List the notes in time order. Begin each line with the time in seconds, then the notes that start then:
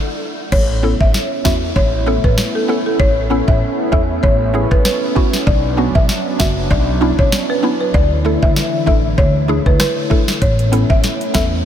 0.52 A1 A3 B3 C#4 E4 C#5, kick, crash
0.83 B3 C#4 E4 A4
1.00 A1 E5, kick
1.14 snare
1.45 E2 B3 C#4 E4 F#4 E5, kick, snare
1.76 A1 C#5, kick
2.06 B3 C#4 E4 A4
2.24 A1 B4, kick
2.38 snare
2.55 A4
2.68 B3 C#4 E4 A4
2.86 A4
2.99 A1 C#5, kick
3.30 B3 C#4 E4 A4
3.48 A1 E5, kick
3.92 E2 B3 C#4 E4 A4 E5, kick
4.23 A1 C#5, kick
4.54 B3 C#4 E4 G#4
4.71 A1 B4, kick
4.85 B4, snare
5.15 B3 C#4 E4 F#4, kick
5.33 snare
5.47 B1 F#3 D4 D5, kick
5.77 B3 C#4 D4 F#4
5.95 B1 E5, kick
6.09 snare
6.39 F#1 B3 C#4 D4 F#4 E5, kick, snare
6.71 B1 D5, kick
7.01 B3 C#4 D4 E4
7.19 B1 C#5, kick
7.32 snare
7.50 B4
7.63 B3 C#4 D4 E4
7.81 B4
7.94 D2 D3 E3 A3 E4 D5, kick
8.25 A3 D4 E4 A4
8.43 D2 E5, kick
8.56 snare
8.86 A1 A3 D4 E4 A4 E5, kick
9.18 D2 C#5, kick
9.48 A3 D4 E4 G#4
9.66 D2 B4, kick
9.80 B4, cross-stick, snare
10.10 A3 D4 E4 A4, kick
10.28 snare
10.42 A1 B3 C#4 E4 C#5, kick, closed hi-hat
10.59 closed hi-hat
10.72 B3 C#4 E4 A4, closed hi-hat
10.90 A1 E5, kick
11.04 snare, closed hi-hat
11.21 closed hi-hat
11.34 E2 B3 C#4 E4 A4 E5, kick, snare, closed hi-hat